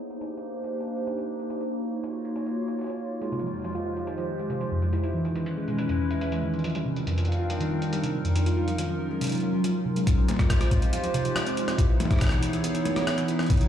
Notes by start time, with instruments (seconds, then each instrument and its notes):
Already playing: ambient pad A#3 D4 D#4 G4 C5
0.10 closed hi-hat
0.21 closed hi-hat
0.37 closed hi-hat
0.64 closed hi-hat
0.80 closed hi-hat
0.96 closed hi-hat
1.07 closed hi-hat
1.18 closed hi-hat
1.39 closed hi-hat
1.50 ambient pad A#3 F4 F#4 C#5, closed hi-hat
1.61 closed hi-hat
2.04 closed hi-hat
2.25 closed hi-hat
2.36 closed hi-hat
2.46 closed hi-hat
2.68 closed hi-hat
2.79 closed hi-hat
2.81 closed hi-hat
2.84 closed hi-hat
2.87 closed hi-hat
2.89 closed hi-hat
3.21 synth pluck G#3, ambient pad G#3 G4 C5, closed hi-hat
3.32 synth pluck C3, closed hi-hat
3.39 synth pluck F3, closed hi-hat
3.46 closed hi-hat
3.53 synth pluck F2, closed hi-hat
3.56 closed hi-hat
3.59 closed hi-hat
3.62 synth pluck F3, closed hi-hat
3.64 closed hi-hat
3.67 closed hi-hat
3.70 closed hi-hat
3.72 synth pluck F4, closed hi-hat
3.75 closed hi-hat
3.86 synth pluck F4
3.96 synth pluck F3, closed hi-hat
4.07 synth pluck D#3, closed hi-hat
4.18 synth pluck F3, closed hi-hat
4.28 synth pluck F3
4.39 synth pluck G#3, closed hi-hat
4.50 synth pluck C3, closed hi-hat
4.61 synth pluck F3, closed hi-hat
4.71 synth pluck F2
4.82 synth pluck F3, closed hi-hat
4.93 ambient pad G#3 C#4 E4 B4, synth pluck E4, closed hi-hat
5.03 synth pluck E4, closed hi-hat
5.14 synth pluck E3
5.25 synth pluck D#3, closed hi-hat
5.36 synth pluck E3, closed hi-hat
5.46 synth pluck E3, closed hi-hat
5.57 synth pluck G#3
5.68 synth pluck B2, closed hi-hat
5.78 synth pluck E3, closed hi-hat
5.89 synth pluck E2, closed hi-hat
6.00 synth pluck E3
6.11 synth pluck E4, closed hi-hat
6.21 synth pluck E4, closed hi-hat
6.32 synth pluck E3, closed hi-hat
6.43 synth pluck D#3
6.53 synth pluck E3, closed hi-hat
6.59 closed hi-hat
6.64 synth pluck F3, ambient pad G3 C4 D4 D#4 A#4, closed hi-hat
6.70 closed hi-hat
6.75 synth pluck G3, closed hi-hat
6.86 synth pluck C3
6.96 synth pluck F3, closed hi-hat
7.07 synth pluck F2, closed hi-hat
7.18 synth pluck F3, closed hi-hat
7.25 synth pluck F4, closed hi-hat
7.32 closed hi-hat
7.39 synth pluck F4
7.50 synth pluck F3, closed hi-hat
7.60 synth pluck D#3, closed hi-hat
7.71 synth pluck F3
7.82 synth pluck F3, closed hi-hat
7.93 synth pluck G3, closed hi-hat
8.03 synth pluck C3, closed hi-hat
8.14 synth pluck F3
8.25 synth pluck F2, closed hi-hat
8.35 synth pluck F3, ambient pad F#3 C#4 F4, closed hi-hat
8.46 synth pluck F4, closed hi-hat
8.57 synth pluck F4
8.68 synth pluck F3, closed hi-hat
8.78 synth pluck D#3, closed hi-hat
8.89 synth pluck F3
9.00 synth pluck F3
9.10 synth pluck G#3
9.21 synth pluck C3, closed hi-hat
9.24 closed hi-hat
9.27 closed hi-hat
9.29 synth pluck F3, closed hi-hat
9.32 closed hi-hat
9.35 closed hi-hat
9.38 closed hi-hat
9.40 synth pluck F4, closed hi-hat
9.53 synth pluck F3
9.64 synth pluck F3, closed hi-hat
9.75 synth pluck F3
9.85 synth pluck C3
9.96 synth pluck G#3, closed hi-hat
10.07 synth pluck F3, ambient pad G#3 D#4 F4 G4 C5, kick, closed hi-hat
10.18 synth pluck F3
10.28 synth pluck C4, closed hi-hat, high tom
10.31 high tom
10.34 high tom
10.37 synth pluck F3, kick, cross-stick, closed hi-hat, high tom
10.42 high tom
10.45 high tom
10.47 synth pluck C4, kick, cross-stick, closed hi-hat, high tom
10.61 synth pluck F4, cross-stick, closed hi-hat
10.71 synth pluck C4, kick, closed hi-hat
10.82 synth pluck F3, closed hi-hat
10.93 synth pluck F4, closed hi-hat
11.03 synth pluck F3, closed hi-hat
11.14 synth pluck C3, closed hi-hat
11.25 synth pluck F3, closed hi-hat
11.36 synth pluck F3, cross-stick, closed hi-hat
11.46 synth pluck C4, closed hi-hat
11.57 synth pluck F3, closed hi-hat
11.68 synth pluck C4, cross-stick, closed hi-hat
11.78 ambient pad B3 E4 G#4 C#5, synth pluck E4, kick, closed hi-hat
11.89 synth pluck B3
12.00 synth pluck E3, closed hi-hat, high tom
12.05 high tom
12.11 synth pluck E4, kick, cross-stick, closed hi-hat, high tom
12.13 cross-stick
12.16 cross-stick, high tom
12.19 cross-stick
12.21 synth pluck E3, kick, cross-stick, closed hi-hat
12.24 cross-stick
12.27 cross-stick
12.29 cross-stick
12.32 synth pluck B2, cross-stick, closed hi-hat
12.43 synth pluck E3, closed hi-hat
12.53 synth pluck E3, closed hi-hat
12.64 synth pluck B3, closed hi-hat
12.75 synth pluck E3, closed hi-hat
12.85 synth pluck B3, closed hi-hat, high tom
12.96 synth pluck E4, cross-stick, closed hi-hat, high tom
13.07 synth pluck B3, cross-stick, closed hi-hat
13.18 synth pluck E3, cross-stick, closed hi-hat
13.28 synth pluck E4, closed hi-hat
13.39 synth pluck E3, cross-stick, closed hi-hat
13.43 closed hi-hat
13.46 synth pluck C3, ambient pad A#3 D4 G4 C5, kick, closed hi-hat
13.50 closed hi-hat
13.54 closed hi-hat
13.57 synth pluck F3, closed hi-hat
13.61 closed hi-hat